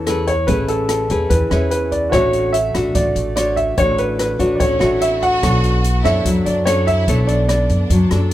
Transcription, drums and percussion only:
0.07 cross-stick, closed hi-hat
0.27 kick, closed hi-hat
0.48 kick, closed hi-hat
0.68 closed hi-hat
0.89 cross-stick, closed hi-hat
1.10 kick, closed hi-hat
1.30 kick, closed hi-hat
1.51 cross-stick, closed hi-hat
1.71 closed hi-hat
1.92 kick, closed hi-hat
2.13 kick, cross-stick, closed hi-hat
2.33 closed hi-hat
2.54 closed hi-hat
2.74 kick, cross-stick, closed hi-hat
2.95 kick, closed hi-hat
3.16 closed hi-hat
3.37 cross-stick, closed hi-hat
3.57 kick, closed hi-hat
3.78 kick, closed hi-hat
3.98 closed hi-hat
4.19 cross-stick, closed hi-hat
4.40 kick, closed hi-hat
4.60 kick, closed hi-hat
4.81 cross-stick, closed hi-hat
5.01 closed hi-hat
5.22 kick, closed hi-hat
5.43 kick, cross-stick, closed hi-hat
5.64 closed hi-hat
5.84 closed hi-hat
6.05 kick, cross-stick, closed hi-hat
6.25 kick, closed hi-hat
6.46 closed hi-hat
6.67 cross-stick, closed hi-hat
6.87 kick, closed hi-hat
7.08 kick, closed hi-hat
7.28 closed hi-hat
7.49 cross-stick, closed hi-hat
7.69 kick, closed hi-hat
7.90 kick, closed hi-hat
8.11 cross-stick, closed hi-hat

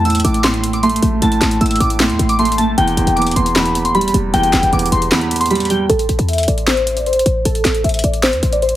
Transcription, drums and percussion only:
0.05 closed hi-hat
0.10 closed hi-hat
0.15 closed hi-hat
0.20 closed hi-hat
0.25 closed hi-hat
0.34 closed hi-hat
0.44 snare, clap, closed hi-hat
0.54 closed hi-hat
0.64 closed hi-hat
0.73 closed hi-hat
0.83 closed hi-hat
0.90 closed hi-hat
0.96 closed hi-hat
1.03 closed hi-hat
1.22 closed hi-hat
1.32 closed hi-hat
1.42 snare, clap, closed hi-hat
1.51 closed hi-hat
1.61 closed hi-hat
1.66 closed hi-hat
1.71 closed hi-hat
1.76 closed hi-hat
1.80 closed hi-hat
1.90 closed hi-hat
2.00 snare, clap, closed hi-hat
2.10 closed hi-hat
2.19 closed hi-hat
2.29 closed hi-hat
2.39 closed hi-hat
2.45 closed hi-hat
2.52 closed hi-hat
2.58 closed hi-hat
2.78 closed hi-hat
2.88 closed hi-hat
2.97 closed hi-hat
3.07 closed hi-hat
3.17 closed hi-hat
3.22 closed hi-hat
3.27 closed hi-hat
3.31 closed hi-hat
3.36 closed hi-hat
3.46 closed hi-hat
3.56 snare, clap, closed hi-hat
3.66 closed hi-hat
3.75 closed hi-hat
3.85 closed hi-hat
3.95 closed hi-hat
4.01 closed hi-hat
4.08 closed hi-hat
4.14 closed hi-hat
4.34 closed hi-hat
4.43 closed hi-hat
4.53 snare, clap, closed hi-hat
4.63 closed hi-hat
4.73 closed hi-hat
4.79 closed hi-hat
4.86 closed hi-hat
4.92 closed hi-hat
5.02 closed hi-hat
5.12 snare, clap, closed hi-hat
5.21 closed hi-hat
5.31 closed hi-hat
5.36 closed hi-hat
5.41 closed hi-hat
5.46 closed hi-hat
5.51 closed hi-hat
5.55 closed hi-hat
5.60 closed hi-hat
5.65 closed hi-hat
5.70 closed hi-hat
5.90 closed hi-hat
5.99 closed hi-hat
6.09 closed hi-hat
6.19 closed hi-hat
6.29 closed hi-hat
6.33 closed hi-hat
6.38 closed hi-hat
6.43 closed hi-hat
6.48 closed hi-hat
6.58 closed hi-hat
6.67 snare, clap, closed hi-hat
6.77 closed hi-hat
6.87 closed hi-hat
6.97 closed hi-hat
7.06 closed hi-hat
7.13 closed hi-hat
7.19 closed hi-hat
7.26 closed hi-hat
7.45 closed hi-hat
7.55 closed hi-hat
7.65 snare, clap, closed hi-hat
7.75 closed hi-hat
7.84 closed hi-hat
7.89 closed hi-hat
7.94 closed hi-hat
7.99 closed hi-hat
8.04 closed hi-hat
8.14 closed hi-hat
8.23 snare, clap, closed hi-hat
8.33 closed hi-hat
8.43 closed hi-hat
8.53 closed hi-hat
8.62 closed hi-hat
8.69 closed hi-hat

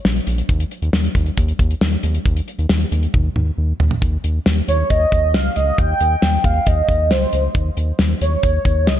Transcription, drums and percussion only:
0.05 snare
0.16 closed hi-hat
0.27 closed hi-hat
0.38 closed hi-hat
0.49 kick, closed hi-hat
0.60 closed hi-hat
0.71 closed hi-hat
0.82 closed hi-hat
0.93 snare
1.04 closed hi-hat
1.15 kick, closed hi-hat
1.26 closed hi-hat
1.37 kick, closed hi-hat
1.48 closed hi-hat
1.59 kick, closed hi-hat
1.71 closed hi-hat
1.81 snare
1.93 closed hi-hat
2.03 closed hi-hat
2.15 closed hi-hat
2.26 kick, closed hi-hat
2.36 closed hi-hat
2.48 closed hi-hat
2.59 closed hi-hat
2.69 snare
2.81 closed hi-hat
2.92 closed hi-hat
3.03 closed hi-hat
3.14 kick, high tom
3.36 mid tom
3.80 floor tom
3.91 floor tom
4.02 kick, closed hi-hat
4.24 closed hi-hat
4.46 snare, closed hi-hat
4.68 closed hi-hat
4.90 kick, closed hi-hat
5.12 kick, closed hi-hat
5.34 snare, closed hi-hat
5.56 closed hi-hat
5.78 kick, closed hi-hat
6.00 closed hi-hat
6.22 snare, closed hi-hat
6.44 kick, closed hi-hat
6.66 kick, closed hi-hat
6.89 kick, closed hi-hat
7.11 snare, closed hi-hat
7.33 closed hi-hat
7.55 kick, closed hi-hat
7.77 closed hi-hat
7.99 snare, closed hi-hat
8.21 closed hi-hat
8.43 kick, closed hi-hat
8.65 kick, closed hi-hat
8.87 snare, closed hi-hat

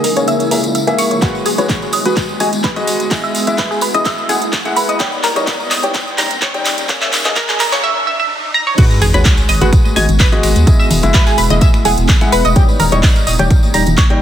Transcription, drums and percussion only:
0.04 open hi-hat, tambourine
0.16 closed hi-hat, tambourine
0.28 closed hi-hat, tambourine
0.40 closed hi-hat, tambourine
0.51 open hi-hat, tambourine
0.64 closed hi-hat, tambourine
0.75 closed hi-hat, tambourine
0.87 closed hi-hat, tambourine
0.98 open hi-hat, tambourine
1.11 closed hi-hat, tambourine
1.22 kick, clap, closed hi-hat, tambourine
1.35 tambourine
1.46 open hi-hat, tambourine
1.58 closed hi-hat, tambourine
1.69 kick, clap, closed hi-hat, tambourine
1.82 tambourine
1.93 open hi-hat, tambourine
2.05 closed hi-hat, tambourine
2.17 kick, clap, closed hi-hat, tambourine
2.29 tambourine
2.40 open hi-hat, tambourine
2.53 closed hi-hat, tambourine
2.64 kick, clap, closed hi-hat, tambourine
2.76 closed hi-hat, tambourine
2.87 open hi-hat, tambourine
3.00 closed hi-hat, tambourine
3.11 kick, clap, closed hi-hat, tambourine
3.24 tambourine
3.35 open hi-hat, tambourine
3.47 closed hi-hat, tambourine
3.58 kick, clap, closed hi-hat, tambourine
3.71 tambourine
3.81 open hi-hat, tambourine
3.94 closed hi-hat, tambourine
4.05 kick, clap, closed hi-hat, tambourine
4.18 tambourine
4.29 open hi-hat, tambourine
4.42 closed hi-hat, tambourine
4.53 kick, clap, closed hi-hat, tambourine
4.65 closed hi-hat, tambourine
4.76 open hi-hat, tambourine
4.89 closed hi-hat, tambourine
4.99 kick, clap, closed hi-hat, tambourine
5.12 tambourine
5.24 clap, open hi-hat, tambourine
5.36 closed hi-hat, tambourine
5.47 kick, clap, closed hi-hat, tambourine
5.60 tambourine
5.71 clap, open hi-hat, tambourine
5.83 closed hi-hat, tambourine
5.94 kick, clap, closed hi-hat, tambourine
6.08 tambourine
6.18 clap, open hi-hat, tambourine
6.30 closed hi-hat, tambourine
6.41 kick, clap, closed hi-hat, tambourine
6.54 closed hi-hat, tambourine
6.65 clap, open hi-hat, tambourine
6.78 closed hi-hat, tambourine
6.89 kick, clap, closed hi-hat, tambourine
7.01 clap, closed hi-hat, tambourine
7.13 clap, open hi-hat, tambourine
7.25 clap, closed hi-hat, tambourine
7.36 kick, clap, closed hi-hat, tambourine
7.49 clap, closed hi-hat, tambourine
7.60 clap, open hi-hat, tambourine
7.72 clap, closed hi-hat, tambourine
8.78 kick, closed hi-hat, crash, tambourine
8.91 tambourine
9.01 open hi-hat, tambourine, low conga
9.14 closed hi-hat, tambourine
9.25 kick, clap, closed hi-hat, tambourine
9.37 closed hi-hat, tambourine
9.49 open hi-hat, tambourine
9.61 closed hi-hat, tambourine, high conga, low conga
9.73 finger snap, kick, closed hi-hat, tambourine
9.85 tambourine, high conga
9.96 open hi-hat, tambourine, high woodblock
10.09 closed hi-hat, tambourine, low conga
10.20 kick, clap, closed hi-hat, tambourine
10.32 closed hi-hat
10.43 finger snap, open hi-hat, tambourine
10.56 closed hi-hat, tambourine, high conga
10.67 kick, closed hi-hat, tambourine
10.80 tambourine
10.90 open hi-hat, tambourine, low conga, high woodblock
11.03 closed hi-hat, tambourine
11.14 kick, clap, closed hi-hat, tambourine
11.27 clap, closed hi-hat, tambourine
11.38 open hi-hat, tambourine
11.50 closed hi-hat, tambourine, high conga, low conga
11.61 kick, closed hi-hat, tambourine
11.74 finger snap, tambourine, high conga
11.85 open hi-hat, tambourine
11.97 closed hi-hat, tambourine
12.09 kick, clap, closed hi-hat, tambourine
12.21 finger snap, closed hi-hat, tambourine
12.32 open hi-hat, tambourine, high woodblock
12.45 closed hi-hat, tambourine, high conga, high woodblock
12.56 kick, closed hi-hat, tambourine
12.69 tambourine
12.80 open hi-hat, tambourine, low conga
12.92 closed hi-hat, tambourine
13.03 kick, clap, closed hi-hat, tambourine
13.16 closed hi-hat, tambourine
13.27 open hi-hat, tambourine
13.39 closed hi-hat, tambourine, high conga, low conga
13.51 finger snap, kick, closed hi-hat, tambourine
13.63 tambourine, high conga
13.74 open hi-hat, tambourine, high woodblock
13.87 closed hi-hat, tambourine, low conga
13.97 kick, clap, closed hi-hat, tambourine
14.10 closed hi-hat

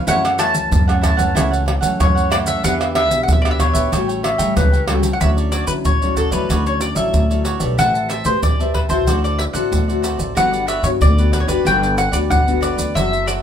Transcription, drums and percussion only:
0.08 pandeiro, maracas, surdo
0.25 pandeiro, tamborim, maracas
0.39 pandeiro, tamborim, maracas
0.55 pandeiro, maracas
0.72 pandeiro, maracas, surdo
0.89 pandeiro, tamborim, maracas
1.04 pandeiro, tamborim, maracas, surdo
1.19 pandeiro, maracas
1.37 pandeiro, tamborim, maracas, surdo
1.53 pandeiro, maracas
1.68 pandeiro, tamborim
1.83 pandeiro, maracas
2.00 pandeiro, tamborim, maracas, surdo
2.17 pandeiro, maracas
2.32 pandeiro, tamborim, maracas
2.47 pandeiro, maracas
2.64 pandeiro, maracas, surdo
2.81 pandeiro, tamborim, maracas
2.95 pandeiro, tamborim
3.11 pandeiro, maracas
3.28 pandeiro, maracas, surdo
3.45 pandeiro, tamborim, maracas
3.60 pandeiro, tamborim, maracas, surdo
3.75 pandeiro, maracas
3.93 pandeiro, tamborim, maracas, surdo
4.09 pandeiro, maracas
4.24 pandeiro, tamborim
4.39 pandeiro, maracas
4.57 pandeiro, tamborim, maracas, surdo
4.74 pandeiro, maracas
4.88 pandeiro, tamborim
5.03 pandeiro, maracas
5.21 pandeiro, maracas, surdo
5.38 pandeiro, maracas
5.52 pandeiro, maracas
5.67 pandeiro, maracas
5.85 pandeiro, maracas, surdo
6.02 pandeiro, maracas
6.17 pandeiro, maracas, surdo
6.32 pandeiro, maracas
6.50 pandeiro, maracas, surdo
6.66 pandeiro, maracas
6.81 pandeiro, maracas
6.96 pandeiro, maracas
7.14 pandeiro, maracas, surdo
7.31 pandeiro, maracas
7.45 pandeiro, maracas
7.60 pandeiro, maracas
7.79 pandeiro, maracas, surdo
7.95 pandeiro, maracas
8.10 pandeiro, maracas
8.25 pandeiro, maracas
8.43 pandeiro, maracas, surdo
8.60 pandeiro, maracas
8.74 pandeiro, surdo
8.89 pandeiro, maracas
9.07 pandeiro, maracas, surdo
9.25 pandeiro, maracas
9.39 pandeiro
9.55 pandeiro, maracas
9.73 pandeiro, maracas, surdo
9.89 pandeiro, maracas
10.04 pandeiro, maracas
10.19 pandeiro, maracas
10.37 pandeiro, maracas, surdo
10.54 pandeiro, maracas
10.68 pandeiro, maracas
10.84 pandeiro, maracas
11.01 pandeiro, maracas, surdo
11.18 pandeiro, maracas
11.33 pandeiro, maracas, surdo
11.49 pandeiro, maracas
11.66 pandeiro, maracas, surdo
11.83 pandeiro, maracas
11.98 pandeiro, maracas
12.13 pandeiro, maracas
12.31 pandeiro, maracas, surdo
12.48 pandeiro, maracas
12.63 pandeiro, maracas
12.79 pandeiro, maracas
12.97 pandeiro, maracas, surdo
13.13 pandeiro, maracas
13.28 pandeiro, maracas

